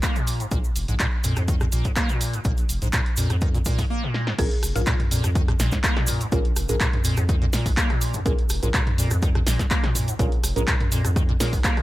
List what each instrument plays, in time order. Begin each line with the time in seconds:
0.02 acid bass A#3, kick, clap, closed hi-hat, cabasa
0.16 acid bass A#2, closed hi-hat, cabasa
0.27 open hi-hat, cabasa
0.40 acid bass G#2, closed hi-hat, cabasa
0.51 sub bass A#1, acid bass A#2, kick, closed hi-hat, cabasa
0.64 cabasa
0.76 sub bass F1, open hi-hat, cabasa
0.88 sub bass A#1, acid bass G#2, closed hi-hat, cabasa
0.99 acid bass A#2, kick, clap, closed hi-hat, cabasa
1.24 sub bass F2, acid bass A#2, open hi-hat, cabasa
1.36 sub bass F2, acid bass G#2, cross-stick, closed hi-hat, cabasa
1.48 acid bass D#3, kick, closed hi-hat, cabasa
1.60 acid bass A#2, cross-stick, cabasa
1.72 sub bass A#1, acid bass A#2, open hi-hat, cabasa
1.85 acid bass G#2, kick, closed hi-hat, cabasa
1.96 acid bass A#3, kick, clap, closed hi-hat, cabasa
2.09 acid bass A#2, closed hi-hat, cabasa
2.21 open hi-hat, cabasa
2.33 acid bass G#2, closed hi-hat, cabasa
2.45 sub bass A#1, acid bass A#2, kick, closed hi-hat, cabasa
2.57 closed hi-hat, cabasa
2.69 sub bass F1, open hi-hat, cabasa
2.82 sub bass A#1, acid bass G#2, closed hi-hat, cabasa
2.93 acid bass A#2, kick, clap, closed hi-hat, cabasa
3.06 closed hi-hat
3.16 sub bass F2, acid bass A#2, open hi-hat, cabasa
3.30 sub bass F2, acid bass G#2, cross-stick, closed hi-hat, cabasa
3.41 acid bass D#3, kick, closed hi-hat, cabasa
3.54 acid bass A#2, closed hi-hat, cabasa
3.65 acid bass A#2, kick, open hi-hat, cabasa
3.78 acid bass G#2, kick, open hi-hat, cabasa
3.90 acid bass A#3
4.03 acid bass A#2
4.14 snare
4.27 acid bass G#2, snare
4.39 sub bass A#1, acid bass A#2, synth stab C#4 F4 G#4 A#4, synth pluck G#4, kick, closed hi-hat, crash, cabasa
4.51 closed hi-hat
4.63 sub bass F1, cross-stick, open hi-hat, cabasa
4.75 sub bass A#1, acid bass G#2, synth stab C#4 F4 G#4 A#4, synth pluck F4, closed hi-hat, cabasa
4.86 acid bass A#2, kick, clap, closed hi-hat, cabasa
5.00 closed hi-hat, mid tom
5.11 sub bass F2, acid bass A#2, open hi-hat, cabasa
5.24 sub bass F2, acid bass G#2, cross-stick, closed hi-hat, cabasa
5.35 acid bass D#3, kick, cross-stick, closed hi-hat, cabasa
5.48 acid bass A#2, cross-stick, closed hi-hat
5.59 sub bass A#1, acid bass A#2, snare, open hi-hat, cabasa
5.72 acid bass G#2, kick, snare, closed hi-hat, cabasa
5.84 acid bass A#3, kick, clap, closed hi-hat, cabasa
5.97 acid bass A#2, cross-stick, snare, closed hi-hat
6.07 mid tom, open hi-hat, cabasa
6.21 acid bass G#2, closed hi-hat, cabasa
6.32 sub bass A#1, acid bass A#2, synth stab C#4 F4 G#4 A#4, kick, closed hi-hat, cabasa
6.45 closed hi-hat
6.56 sub bass F1, cross-stick, open hi-hat, cabasa
6.69 sub bass A#1, acid bass G#2, synth stab C#4 F4 G#4 A#4, closed hi-hat, cabasa
6.80 acid bass A#2, kick, clap, closed hi-hat, cabasa
6.93 closed hi-hat, mid tom
7.04 sub bass F2, acid bass A#2, open hi-hat, cabasa
7.17 sub bass F2, acid bass G#2, cross-stick, closed hi-hat, cabasa
7.29 acid bass D#3, kick, cross-stick, closed hi-hat, cabasa
7.42 acid bass A#2, closed hi-hat
7.53 acid bass A#2, snare, open hi-hat, cabasa
7.66 sub bass A#1, acid bass G#2, kick, open hi-hat, cabasa
7.77 acid bass A#3, kick, clap, closed hi-hat, cabasa
7.90 acid bass A#2, cross-stick, closed hi-hat
8.01 open hi-hat, cabasa
8.14 acid bass G#2, closed hi-hat, mid tom, cabasa
8.26 sub bass A#1, acid bass A#2, synth stab C#4 F4 G#4 A#4, kick, closed hi-hat, cabasa
8.39 closed hi-hat
8.49 sub bass F1, cross-stick, open hi-hat, cabasa
8.63 sub bass A#1, acid bass G#2, synth stab C#4 F4 G#4 A#4, closed hi-hat, cabasa
8.74 acid bass A#2, kick, clap, closed hi-hat, cabasa
8.87 closed hi-hat, mid tom
8.98 sub bass F2, acid bass A#2, open hi-hat, cabasa
9.11 sub bass F2, acid bass G#2, cross-stick, closed hi-hat, cabasa
9.22 acid bass D#3, kick, cross-stick, closed hi-hat, cabasa
9.35 acid bass A#2, cross-stick, closed hi-hat
9.47 sub bass A#1, acid bass A#2, snare, open hi-hat, cabasa
9.59 acid bass G#2, kick, snare, closed hi-hat, cabasa
9.71 acid bass A#3, kick, clap, closed hi-hat, cabasa
9.84 acid bass A#2, cross-stick, snare, closed hi-hat
9.95 mid tom, open hi-hat, cabasa
10.08 acid bass G#2, closed hi-hat, cabasa
10.19 sub bass A#1, acid bass A#2, synth stab C#4 F4 G#4 A#4, kick, closed hi-hat, cabasa
10.32 closed hi-hat
10.43 sub bass F1, cross-stick, open hi-hat, cabasa
10.56 sub bass A#1, acid bass G#2, synth stab C#4 F4 G#4 A#4, closed hi-hat, cabasa
10.67 acid bass A#2, kick, clap, closed hi-hat, cabasa
10.80 closed hi-hat, mid tom
10.92 sub bass F2, acid bass A#2, open hi-hat, cabasa
11.05 sub bass F2, acid bass G#2, cross-stick, closed hi-hat, cabasa
11.16 acid bass D#3, kick, cross-stick, closed hi-hat, cabasa
11.29 acid bass A#2, closed hi-hat
11.40 acid bass A#2, synth stab C#4 F4 G#4 A#4, snare, open hi-hat, cabasa
11.53 sub bass A#1, acid bass G#2, kick, open hi-hat, cabasa
11.64 acid bass A#3, kick, clap, closed hi-hat, cabasa
11.77 acid bass A#2, cross-stick, closed hi-hat